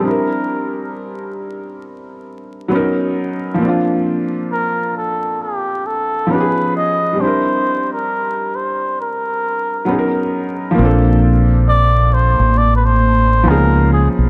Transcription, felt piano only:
X:1
M:4/4
L:1/8
Q:"Swing 16ths" 1/4=67
K:Bblyd
V:1 name="Felt piano"
[G,CDEB]6 [^F,=B,_D^D^A]2 | [F,B,CDF]6 [F,_C_D_EG_A]2 | [G,CDEB]6 [^F,=B,_D^D_A^A]2 | [F,B,CDA]6 [F,_C_D_E_A]2 |]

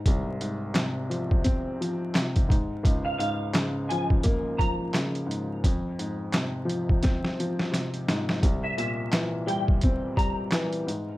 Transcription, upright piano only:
X:1
M:4/4
L:1/8
Q:"Swing 16ths" 1/4=86
K:Fm
V:1 name="Upright piano" clef=bass
[C,,A,,] A,, C, F, C F, C, A,, | D,, A,, D, F, B, F, D, A,, | F,, A,, C, F, C F, C, A,, | C,, B,, =E, G, C G, E, A,, |]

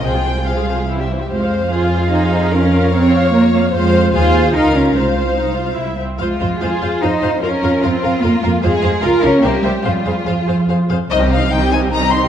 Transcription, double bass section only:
X:1
M:3/4
L:1/8
Q:1/4=147
K:Fm
V:1 name="Double bass section" clef=bass
C,,4- C,, z | F,,6- | F,,6 | F,,2 E,,2 D,,2 |
C,,4 C,, z | F,, F,, F,, F,, F,, F,, | F,, F,, F,, F,, F,, F,, | F,, F,, D,, D,, C,, C,, |
F,, F,, F,, F,, F,, F,, | [K:Cm] C,,2 C,,2 C,,2 |]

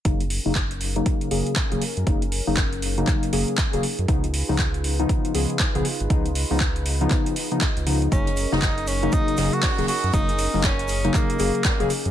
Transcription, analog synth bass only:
X:1
M:4/4
L:1/16
Q:"Swing 16ths" 1/4=119
K:F#
V:1 name="Analog synth bass" clef=bass
F,,,3 F,,,4- F,,, z2 F,,, z2 D,,, z F,, | F,,,3 F,,,4- F,,, z2 F,,, z2 D,,, z F,, | C,,3 C,,4- C,, z2 C,, z2 B,,, z G,,, | C,,3 C,,4- C,, z4 z C,,3 |
F,,,3 F,,,4- F,,, z2 F,,, z2 D,,, z F,, | F,,,3 F,,,4- F,,, z2 F,,, z2 D,,, z F,, |]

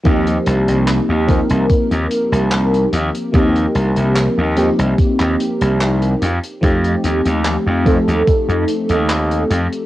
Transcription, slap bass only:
X:1
M:4/4
L:1/16
Q:1/4=73
K:Eblyd
V:1 name="Slap bass" clef=bass
E,,2 C,, C,,2 E,,2 C,, z E,, z C,,3 E,, z | E,,2 C,, C,,2 E,,2 C,, z E,, z C,,3 F,, z | F,,2 E,, E,,2 F,,2 E,, z F,, z E,,3 F,, z |]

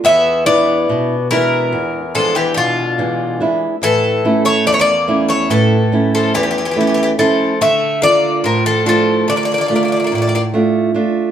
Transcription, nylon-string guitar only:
X:1
M:9/8
L:1/8
Q:3/8=48
K:Dm
V:1 name="Nylon-string guitar"
E,, [^G,DE] =B,, [G,DE] E,, [E,G,D] B,, [E,G,D] [G,DE] | A,, [A,^CE] E,, [A,CE] A,, [A,CE] E,, [A,CE] [A,CE] | D, [DFA] A,, [A,DF] D, [A,DF] A,, [A,DF] [A,DF] |]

